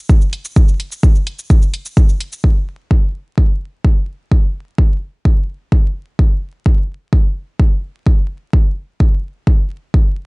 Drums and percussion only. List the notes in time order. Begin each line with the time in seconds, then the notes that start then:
0.09 kick, shaker
0.21 shaker
0.33 closed hi-hat
0.45 shaker
0.56 kick, shaker
0.68 shaker
0.80 closed hi-hat
0.92 shaker
1.03 kick, shaker
1.15 shaker
1.27 closed hi-hat
1.39 shaker
1.50 kick, shaker
1.62 shaker
1.74 closed hi-hat
1.86 shaker
1.97 kick, shaker
2.09 shaker
2.21 closed hi-hat
2.33 shaker
2.44 kick
2.91 kick
3.38 kick
3.85 kick
4.31 kick
4.78 kick
5.25 kick
5.72 kick
6.19 kick
6.66 kick
7.13 kick
7.60 kick
8.06 kick
8.53 kick
9.00 kick
9.47 kick
9.94 kick